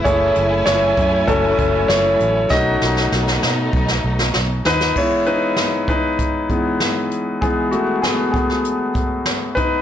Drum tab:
CC |----------------|----------------|x---------------|----------------|
HH |x-x-x-x-x-x-x-x-|----------------|--x-x-x-x-x-x-x-|x-x-x-x-x-x-x-x-|
SD |----o-------o---|o-ooooo--o-oo-oo|----o-------o---|----o--o----o---|
BD |o-----o-o-o-----|o-------o-------|o-----o-o-o-----|o-----o---o---o-|